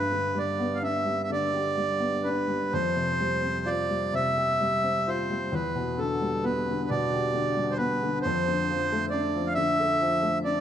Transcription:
0.00 2.68 G2 medium
0.00 0.39 B4 medium
0.12 1.29 D3 soft
0.34 1.04 G3 soft
0.34 0.78 D5 medium
0.59 1.98 B3 soft
0.75 0.83 F5 medium
0.83 2.23 D4 soft
0.83 1.22 E5 medium
1.05 1.76 G3 soft
1.23 1.30 E5 medium
1.30 2.68 D3 medium
1.30 2.29 D5 medium
1.54 2.69 G4 soft
1.77 2.46 G3 soft
2.00 2.70 B3 soft
2.24 2.71 D4 soft
2.24 2.73 B4 medium
2.48 2.71 G3 soft
2.73 5.48 F2 medium
2.73 3.70 C5 medium
2.96 4.11 C3 soft
3.20 3.89 G3 soft
3.43 4.82 C4 soft
3.66 5.06 F4 medium
3.66 4.14 D5 medium
3.90 4.59 G3 soft
4.13 5.48 C3 medium
4.13 5.10 E5 loud
4.36 5.49 G4 soft
4.60 5.29 G3 medium
4.83 5.50 C4 soft
5.08 5.52 F4 medium
5.08 5.54 C5 medium
5.30 5.52 G3 soft
5.52 8.18 E2 medium
5.52 6.00 B4 medium
5.75 6.89 B2 soft
5.98 6.66 D3 soft
5.98 6.45 A4 medium
6.21 7.55 G3 soft
6.44 7.77 B3 soft
6.44 6.90 B4 medium
6.68 7.33 D3 soft
6.90 8.19 B2 medium
6.90 7.74 D5 medium
7.13 8.19 G4 soft
7.34 8.01 D3 medium
7.56 8.20 G3 soft
7.71 7.78 C5 medium
7.78 8.21 B3 medium
7.78 8.19 B4 medium
8.02 8.23 D3 medium
8.22 10.61 F2 medium
8.22 9.06 C5 medium
8.48 9.56 D3 soft
8.71 9.34 F3 soft
8.92 10.21 A3 medium
9.10 10.43 D4 medium
9.10 9.48 D5 medium
9.36 10.00 F3 soft
9.47 9.54 F5 medium
9.55 10.61 D3 medium
9.55 10.38 E5 loud
9.80 10.61 A4 soft
10.02 10.61 F3 medium
10.23 10.61 A3 soft
10.44 10.61 D4 medium
10.44 10.61 D5 medium

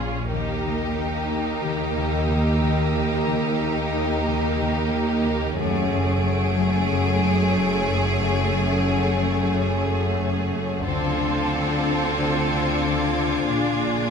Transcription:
0.00 0.26 A#1 medium
0.00 0.27 A#1 soft
0.00 0.26 A#2 soft
0.00 0.34 A#2 soft
0.00 2.57 A#3 soft
0.00 0.27 C#4 soft
0.00 0.27 F4 soft
0.00 0.26 G#4 soft
0.31 5.54 D#2 soft
0.31 5.55 D#2 soft
0.31 5.59 D#2 medium
0.31 0.63 D#3 medium
0.31 5.54 A#3 soft
0.31 5.54 D#4 soft
0.31 5.55 G4 soft
0.31 5.22 D#6 soft
0.65 1.62 D#3 soft
0.97 1.29 D#4 soft
0.97 5.22 E6 soft
1.31 3.60 D#4 soft
1.63 1.95 D#3 medium
1.97 2.29 D#3 soft
2.30 2.62 D#3 soft
2.63 2.94 D#3 soft
2.95 3.28 D#3 medium
3.30 4.26 D#3 soft
3.62 3.94 D#4 soft
3.95 5.62 D#4 soft
4.27 4.59 D#3 medium
4.61 4.93 D#3 soft
5.26 5.61 D#3 soft
5.58 10.86 F#1 medium
5.58 10.82 F#1 medium
5.58 10.82 F#2 medium
5.58 5.91 F#2 medium
5.58 10.82 A3 medium
5.58 10.82 C#4 soft
5.58 10.86 G#4 medium
5.58 10.49 C#5 soft
5.58 9.83 D7 soft
5.92 6.90 F#2 soft
6.24 6.56 F#3 soft
6.57 8.87 F#3 soft
6.91 7.22 F#2 medium
7.23 7.55 F#2 soft
7.56 7.88 F#2 soft
7.89 8.20 F#2 soft
8.21 8.53 F#2 medium
8.55 9.52 F#2 soft
8.89 9.19 F#3 soft
9.21 10.88 F#3 soft
9.53 9.86 F#2 medium
9.87 10.19 F#2 soft
10.20 10.52 F#2 soft
10.54 10.89 F#2 soft
10.86 13.49 D2 medium
10.86 13.46 D2 soft
10.86 13.46 D3 soft
10.86 11.18 D3 medium
10.86 13.46 C4 soft
10.86 14.10 F4 soft
10.86 13.45 A4 soft
10.86 14.10 D6 soft
10.86 14.10 G#6 soft
11.20 12.17 D3 soft
11.52 11.84 D4 soft
11.85 14.10 D4 soft
12.18 12.49 D3 soft
12.50 12.83 D3 soft
12.84 13.16 D3 soft
13.17 13.52 D3 soft
13.49 14.10 A#1 medium
13.49 14.10 A#1 soft
13.49 14.10 A#2 soft
13.49 13.81 A#2 soft
13.49 14.10 D4 soft
13.49 14.10 G#4 soft
13.83 14.10 A#2 soft

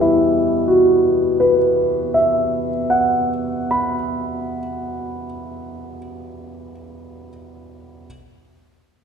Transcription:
0.00 1.58 E2 soft
0.00 2.13 B2 soft
0.00 2.69 E3 soft
0.00 3.30 G3 soft
0.00 3.94 B3 soft
0.00 4.59 E4 soft
0.00 1.56 E5 soft
0.68 5.25 F#4 soft
1.40 5.98 B4 soft
2.14 6.72 E5 soft
2.90 7.28 F#5 soft
3.71 7.28 B5 soft

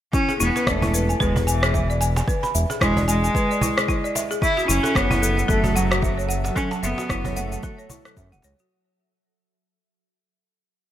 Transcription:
0.13 0.38 C#4 loud
0.13 0.28 E4 medium
0.13 kick loud
0.13 shaker soft
0.29 0.39 G#4 medium
0.29 cajon slap medium
0.29 shaker soft
0.40 0.51 E1 loud
0.40 0.69 B3 medium
0.40 0.55 E4 medium
0.40 shaker medium
0.56 0.67 B4 medium
0.56 cajon slap medium
0.56 shaker soft
0.67 1.15 E1 medium
0.67 1.20 A3 loud
0.67 0.82 D5 medium
0.67 kick loud
0.67 cross-stick medium
0.67 shaker soft
0.82 0.93 E4 medium
0.82 cajon bass medium
0.82 shaker soft
0.94 1.08 B4 medium
0.94 shaker medium
1.09 1.19 G#5 medium
1.09 shaker soft
1.20 2.22 E1 medium
1.20 1.33 G#3 medium
1.20 1.35 B4 medium
1.20 kick loud
1.20 shaker soft
1.36 1.46 G#4 medium
1.36 cajon bass medium
1.36 shaker soft
1.47 1.97 E3 medium
1.47 1.61 G#5 medium
1.47 shaker medium
1.63 1.73 G#4 medium
1.63 cross-stick medium
1.63 shaker soft
1.74 1.83 E5 medium
1.74 kick loud
1.74 shaker soft
1.90 1.96 D5 medium
1.90 shaker soft
2.01 2.16 G#5 medium
2.01 shaker medium
2.16 2.27 G#5 medium
2.16 cajon slap medium
2.16 shaker soft
2.28 2.42 B4 medium
2.28 kick loud
2.28 shaker soft
2.43 2.50 B5 medium
2.43 cajon slap medium
2.43 shaker soft
2.55 2.65 E1 loud
2.55 2.69 E5 medium
2.55 shaker medium
2.70 2.80 G#4 medium
2.70 cajon slap medium
2.70 shaker soft
2.81 3.29 E1 medium
2.81 3.06 G#3 loud
2.81 2.95 E4 medium
2.81 kick loud
2.81 cross-stick medium
2.81 shaker soft
2.97 3.03 D5 medium
2.97 cajon bass medium
2.97 shaker soft
3.08 4.11 G#3 loud
3.08 3.23 G#5 medium
3.08 shaker medium
3.24 3.34 G#5 medium
3.24 shaker soft
3.35 3.50 B4 medium
3.35 kick loud
3.35 shaker soft
3.51 3.61 D5 medium
3.51 shaker soft
3.61 3.71 E4 medium
3.61 cajon bass medium
3.61 shaker medium
3.77 3.87 G#4 medium
3.77 cross-stick medium
3.77 shaker soft
3.88 4.02 E4 medium
3.88 kick loud
3.88 shaker soft
4.04 4.11 D5 medium
4.04 shaker soft
4.15 4.29 E5 medium
4.15 cajon slap medium
4.15 shaker medium
4.31 4.42 G#4 medium
4.31 shaker soft
4.42 8.70 F#3 medium
4.42 4.57 E4 medium
4.42 4.67 E4 loud
4.42 kick loud
4.42 shaker soft
4.57 4.68 F#4 medium
4.57 cajon slap medium
4.57 shaker soft
4.63 8.70 F#4 medium
4.63 8.70 A4 medium
4.63 8.70 E5 medium
4.68 4.80 F#1 loud
4.68 4.97 C#4 loud
4.68 4.83 E4 loud
4.68 shaker medium
4.83 4.95 A4 medium
4.83 cajon slap medium
4.83 shaker soft
4.95 5.44 F#1 medium
4.95 5.49 B3 loud
4.95 5.10 C#5 medium
4.95 kick loud
4.95 cross-stick medium
4.95 shaker soft
5.11 5.22 E4 loud
5.11 cajon bass medium
5.11 shaker soft
5.22 5.36 A4 medium
5.22 shaker medium
5.37 5.48 F#5 medium
5.37 shaker soft
5.48 6.51 F#1 medium
5.48 5.78 A3 loud
5.48 5.63 A4 loud
5.48 kick loud
5.48 shaker soft
5.64 5.75 F#4 medium
5.64 cajon bass medium
5.64 shaker soft
5.76 6.30 F#3 medium
5.76 5.90 F#5 medium
5.76 shaker medium
5.91 6.01 F#4 medium
5.91 cross-stick medium
5.91 shaker soft
6.02 6.11 E5 medium
6.02 kick loud
6.02 shaker soft
6.18 6.24 C#5 medium
6.18 shaker soft
6.29 6.43 F#5 medium
6.29 shaker medium
6.44 6.55 F#5 medium
6.44 cajon slap medium
6.44 shaker soft
6.56 6.68 C#4 loud
6.56 6.71 A4 medium
6.56 kick loud
6.56 shaker soft
6.71 6.78 A5 medium
6.71 cajon slap medium
6.71 shaker soft
6.83 6.94 F#1 medium
6.83 7.37 B3 loud
6.83 6.98 E5 medium
6.83 shaker medium
6.98 7.09 F#4 medium
6.98 cajon slap medium
6.98 shaker soft
7.09 7.58 F#1 medium
7.09 7.24 E4 medium
7.09 kick loud
7.09 cross-stick medium
7.09 shaker soft
7.25 7.32 C#5 medium
7.25 cajon bass medium
7.25 shaker soft
7.36 8.17 A3 medium
7.36 7.51 F#5 loud
7.36 shaker medium
7.52 7.62 F#5 medium
7.52 shaker soft
7.63 7.78 A4 medium
7.63 kick loud
7.63 shaker soft
7.79 7.90 C#5 medium
7.79 shaker soft
7.90 8.04 E4 medium
7.90 cajon bass medium
7.90 shaker medium
8.05 8.16 A4 medium
8.05 cross-stick medium
8.05 shaker soft
8.17 8.34 F#2 loud
8.17 8.32 E5 medium
8.17 kick loud
8.17 shaker soft
8.32 8.40 E1 loud
8.32 8.43 F#5 loud
8.32 shaker soft
8.42 8.55 C#2 medium
8.42 8.53 C#5 loud
8.42 cajon slap medium
8.42 shaker medium
8.59 8.70 F#4 medium
8.59 shaker soft

